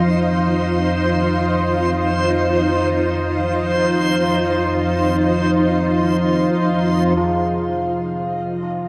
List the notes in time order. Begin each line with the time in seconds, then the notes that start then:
Already playing: F2 F3 D#4 F4 C5
7.17 C3 F4 D#5